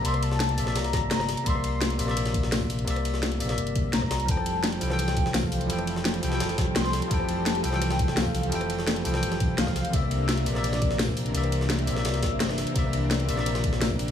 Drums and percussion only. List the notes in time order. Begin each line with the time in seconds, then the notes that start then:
0.05 closed hi-hat, ride
0.14 cross-stick, ride
0.23 closed hi-hat, ride
0.32 snare
0.40 snare, closed hi-hat, ride
0.49 closed hi-hat
0.58 open hi-hat, ride
0.67 cross-stick, snare
0.76 snare, closed hi-hat, ride
0.84 snare, closed hi-hat
0.93 kick, snare, closed hi-hat, ride
1.11 snare, closed hi-hat, ride
1.20 cross-stick, snare
1.29 snare, open hi-hat, ride
1.37 closed hi-hat, ride
1.46 kick, closed hi-hat, ride
1.55 cross-stick
1.64 closed hi-hat, ride
1.81 snare, closed hi-hat, ride
1.90 closed hi-hat
1.99 open hi-hat, ride
2.08 cross-stick, snare
2.17 cross-stick, closed hi-hat, ride
2.26 snare, closed hi-hat
2.34 kick, closed hi-hat, ride
2.43 snare
2.52 snare, closed hi-hat, open hi-hat
2.61 kick
2.70 open hi-hat, ride
2.79 closed hi-hat
2.88 closed hi-hat, ride
2.96 cross-stick, ride
3.05 closed hi-hat, ride
3.14 snare
3.23 snare, closed hi-hat, ride
3.32 closed hi-hat
3.40 open hi-hat, ride
3.49 cross-stick, snare, closed hi-hat
3.58 closed hi-hat
3.67 closed hi-hat
3.76 kick, closed hi-hat, ride
3.93 snare, closed hi-hat, ride
4.02 kick, cross-stick
4.11 snare, open hi-hat, ride
4.20 closed hi-hat
4.28 kick, closed hi-hat, ride
4.37 cross-stick
4.46 closed hi-hat, ride
4.64 snare, closed hi-hat, ride
4.72 closed hi-hat
4.81 open hi-hat, ride
4.90 cross-stick, snare
4.99 cross-stick, closed hi-hat, ride
5.08 snare, closed hi-hat
5.17 kick, closed hi-hat, ride
5.26 snare
5.34 snare, closed hi-hat, open hi-hat
5.43 kick
5.52 open hi-hat, ride
5.61 closed hi-hat
5.70 closed hi-hat, ride
5.79 cross-stick, ride
5.87 closed hi-hat, ride
5.96 snare
6.05 snare, closed hi-hat, ride
6.14 closed hi-hat
6.23 open hi-hat, ride
6.32 cross-stick, snare
6.40 snare, closed hi-hat, ride
6.49 snare, closed hi-hat
6.58 kick, snare, closed hi-hat, ride
6.76 snare, closed hi-hat, ride
6.84 cross-stick, snare
6.93 snare, open hi-hat, ride
7.02 closed hi-hat, ride
7.11 kick, closed hi-hat, ride
7.20 cross-stick
7.29 closed hi-hat, ride
7.46 snare, closed hi-hat, ride
7.55 closed hi-hat
7.64 open hi-hat, ride
7.73 cross-stick, snare
7.82 cross-stick, closed hi-hat, ride
7.90 snare, closed hi-hat
7.99 kick, closed hi-hat, ride
8.08 snare
8.17 snare, closed hi-hat, open hi-hat
8.26 kick
8.35 open hi-hat, ride
8.43 closed hi-hat
8.52 closed hi-hat, ride
8.61 cross-stick, ride
8.70 closed hi-hat, ride
8.79 snare
8.87 snare, closed hi-hat, ride
8.96 closed hi-hat
9.05 open hi-hat, ride
9.14 cross-stick, snare
9.23 closed hi-hat, ride
9.32 snare, closed hi-hat
9.40 kick, closed hi-hat, ride
9.58 snare, closed hi-hat, ride
9.67 kick, cross-stick, snare
9.76 snare, open hi-hat, ride
9.85 closed hi-hat, ride
9.93 kick, closed hi-hat, ride
10.02 cross-stick
10.11 closed hi-hat, ride
10.29 snare, closed hi-hat, ride
10.37 closed hi-hat
10.46 open hi-hat, ride
10.55 cross-stick, snare
10.64 cross-stick, closed hi-hat, ride
10.73 snare, closed hi-hat
10.82 kick, closed hi-hat, ride
10.91 snare
10.99 snare, closed hi-hat, open hi-hat
11.08 kick
11.17 open hi-hat, ride
11.26 closed hi-hat
11.35 closed hi-hat, ride
11.43 cross-stick, ride
11.52 closed hi-hat, ride
11.61 snare
11.70 snare, closed hi-hat, ride
11.79 closed hi-hat
11.87 open hi-hat, ride
11.96 cross-stick, snare
12.05 snare, closed hi-hat, ride
12.14 snare, closed hi-hat
12.23 kick, snare, closed hi-hat, ride
12.40 snare, closed hi-hat, ride
12.49 cross-stick, snare
12.58 snare, open hi-hat, ride
12.67 closed hi-hat, ride
12.76 kick, closed hi-hat, ride
12.84 cross-stick
12.93 closed hi-hat, ride
13.11 snare, closed hi-hat, ride
13.20 closed hi-hat
13.29 open hi-hat, ride
13.37 cross-stick, snare
13.46 cross-stick, closed hi-hat, ride
13.55 snare, closed hi-hat
13.64 kick, closed hi-hat, ride
13.73 snare
13.81 snare, closed hi-hat, open hi-hat
13.91 kick
13.99 open hi-hat, ride